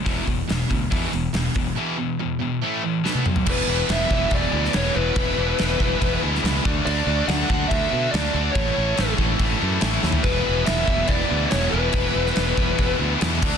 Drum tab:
CC |----------------|----------------|x---x---x---x---|x---x---x---x---|
HH |o-o-o-o-o-o-o-o-|----------------|----------------|----------------|
SD |----o-------o---|------------o---|----o------oo---|----o------oo---|
T1 |----------------|-------------o--|----------------|----------------|
T2 |----------------|--------------o-|----------------|----------------|
FT |----------------|---------------o|----------------|----------------|
BD |o-o---o-o-----o-|----------------|o-----o-o-------|o-----o-o-----o-|

CC |x---x---x---x---|x---x---x---x---|x---x---x---x---|x---x---x---x-x-|
HH |----------------|----------------|----------------|----------------|
SD |----o-------o---|----o-------o-o-|----o-------o---|---oo-------o---|
T1 |----------------|----------------|----------------|----------------|
T2 |----------------|----------------|----------------|----------------|
FT |----------------|---------------o|----------------|----------------|
BD |------o-o-------|o-----o-o-------|o-----o-o-------|o-----o-o-----o-|